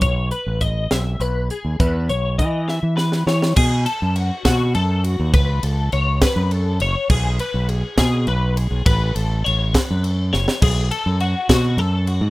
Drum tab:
CC |------------|------------|x-----------|------------|
RD |------------|------------|--x-x-x-x-x-|x-x-x-x-x-x-|
HH |x-x-x-x-x-x-|x-x-x-------|------------|------------|
SD |------o-----|------o-oooo|------o-----|------o-----|
BD |o---o-------|o---o-------|o-----o-----|o-----o-----|

CC |x-----------|------------|x-----------|
RD |--x-x-x-x-x-|x-x-x-x-x---|--x-x-x-x-x-|
HH |------------|------------|------------|
SD |------o-----|------o---oo|------o-----|
BD |o-----o-----|o-----o-----|o-----o-----|